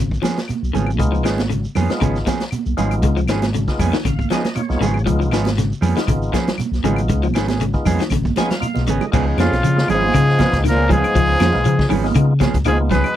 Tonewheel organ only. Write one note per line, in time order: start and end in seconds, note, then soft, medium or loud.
0.99 1.43 G#3 medium
0.99 1.43 B3 medium
0.99 1.43 D#4 medium
0.99 1.43 F4 medium
1.90 2.32 G#3 medium
1.90 2.32 B3 medium
1.90 2.32 D#4 medium
1.90 2.32 F4 medium
2.77 3.21 G#3 medium
2.77 3.21 B3 medium
2.77 3.21 D#4 medium
2.77 3.21 F4 loud
3.68 3.99 G#3 medium
3.68 3.98 B3 medium
3.68 3.98 D#4 medium
3.68 3.98 F4 medium
3.80 4.04 G#5 medium
4.06 4.29 F5 medium
4.31 4.44 G#3 medium
4.31 4.44 B3 medium
4.31 4.44 D#4 medium
4.31 4.44 F4 loud
4.31 4.54 D#5 medium
4.55 4.62 D#4 medium
4.55 4.62 F4 medium
4.55 5.02 C#5 medium
4.69 4.87 G#3 medium
4.69 4.87 B3 medium
4.69 4.87 D#4 medium
4.69 4.87 F4 loud
5.06 5.50 G#3 medium
5.06 5.50 B3 medium
5.06 5.50 D#4 medium
5.06 5.50 F4 loud
5.96 6.39 G#3 medium
5.96 6.38 B3 medium
5.96 6.39 D#4 medium
5.96 6.39 F4 loud
6.84 7.28 G#3 medium
6.84 7.28 B3 medium
6.84 7.28 D#4 medium
6.84 7.28 F4 medium
7.74 8.04 G#3 medium
7.74 8.04 B3 medium
7.74 8.04 D#4 medium
7.74 8.04 F4 medium
8.37 8.50 G#3 medium
8.37 8.50 B3 medium
8.37 8.50 D#4 medium
8.37 8.50 F4 loud
8.37 8.50 G#5 medium
8.51 8.59 F5 medium
8.60 8.68 D#4 medium
8.60 8.68 F4 loud
8.60 8.84 F5 medium
8.74 8.92 G#3 medium
8.74 8.93 B3 medium
8.74 8.93 D#4 medium
8.74 8.93 F4 loud
8.87 9.10 D#5 medium
9.12 9.43 G#3 medium
9.12 9.43 B3 medium
9.12 9.43 D#4 medium
9.12 9.43 F4 loud
9.76 10.06 G#3 medium
9.76 10.06 B3 medium
9.76 10.07 D#4 medium
9.76 10.06 F4 medium
10.39 10.63 G#3 medium
10.39 10.64 B3 medium
10.39 10.63 D#4 medium
10.39 10.64 F4 medium
10.89 11.20 G#3 medium
10.89 11.20 B3 medium
10.89 11.20 D#4 medium
10.89 11.20 F4 medium
11.52 11.78 G#3 medium
11.52 11.77 B3 medium
11.52 11.77 D#4 medium
11.52 11.77 F4 medium
12.04 12.34 G#3 loud
12.04 12.34 B3 medium
12.04 12.34 D#4 medium
12.04 12.34 F4 loud
12.66 12.90 G#3 medium
12.66 12.90 B3 medium
12.66 12.90 D#4 medium
12.66 12.90 F4 loud